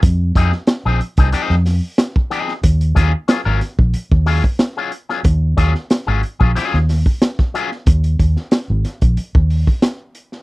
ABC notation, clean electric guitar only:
X:1
M:4/4
L:1/16
Q:1/4=92
K:Ebdor
V:1 name="Clean electric guitar"
z2 [F,CEA] z2 [F,CEA] z [F,CEA] [F,CEA] z4 z [F,CEA] z | z2 [G,DFA] z [G,DFA] [G,DFB] z4 [G,DFA] z2 [G,DFA] z [G,DFA] | z2 [G,DFA] z2 [G,DFA] z [G,DFA] [G,DFA] z4 z [G,DFA] z | z16 |]